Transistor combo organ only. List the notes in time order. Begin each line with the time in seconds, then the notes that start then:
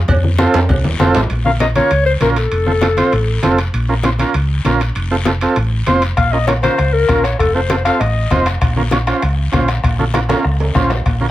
0.39 C4 F4 A4
1.00 C4 F4 A4
1.46 C#4 F4 A#4
1.61 C#4 F4 A#4
1.76 C#4 F4 A#4
2.21 C#4 F4 A#4
2.66 C4 F4 A4
2.82 C4 F4 A4
2.97 C4 F4 C5
3.43 C4 F4 A4
3.89 C#4 F4 A#4
4.04 C#4 F4 C5
4.19 C#4 F4 A#4
4.66 C#4 F4 A#4
5.11 C4 F4 A4
5.26 C4 F4 A4
5.42 C4 F4 A4
5.87 C4 F4 C5
6.33 C#4 F4 A#4
6.48 C#4 F4 A#4
6.63 C#4 F4 A#4
7.09 C#4 F4 A#4
7.55 C4 F4 A4
7.70 C4 F4 A4
7.86 C4 F4 A4
8.32 C4 F4 C5
8.77 C#4 F4 A#4
8.92 C#4 F4 C#5
9.07 C#4 F4 C5
9.52 C#4 F4 C5
9.99 C#4 F4 A4
10.14 C#4 F4 A#4
10.29 C#4 F4 A#4
10.75 C#4 F4 C5
11.21 C#4 F4 A#4